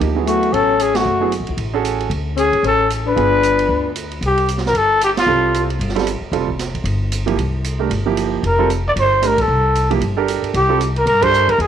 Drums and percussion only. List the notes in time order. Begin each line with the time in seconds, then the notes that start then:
0.01 ride
0.27 hi-hat pedal, ride
0.43 ride
0.54 ride
0.79 hi-hat pedal, ride
0.95 snare, ride
1.32 hi-hat pedal, ride
1.47 ride
1.57 ride
1.85 hi-hat pedal, ride
2.00 ride
2.11 ride
2.37 hi-hat pedal, ride
2.53 kick, ride
2.64 ride
2.90 hi-hat pedal, ride
3.17 ride
3.43 hi-hat pedal, ride
3.59 ride
3.96 hi-hat pedal, ride
4.11 ride
4.22 ride
4.37 ride
4.48 hi-hat pedal, ride
4.57 snare
4.66 snare
4.75 ride
5.01 hi-hat pedal, ride
5.17 snare, ride
5.54 hi-hat pedal, ride
5.70 ride
5.81 ride
5.89 snare
5.96 snare, ride
6.07 hi-hat pedal, ride
6.33 ride
6.48 kick
6.59 snare, hi-hat pedal, ride
6.74 kick, ride
6.85 ride
7.12 hi-hat pedal, ride
7.27 ride
7.39 ride
7.64 hi-hat pedal, ride
7.91 ride
8.17 hi-hat pedal, ride
8.44 ride
8.70 hi-hat pedal, ride
8.96 ride
9.22 hi-hat pedal, ride
9.38 kick, ride
9.75 hi-hat pedal, ride
9.91 ride
10.01 ride
10.28 hi-hat pedal, ride
10.44 ride
10.54 ride
10.81 hi-hat pedal, ride
10.96 ride
11.07 ride
11.22 kick, ride
11.34 hi-hat pedal
11.49 ride
11.60 ride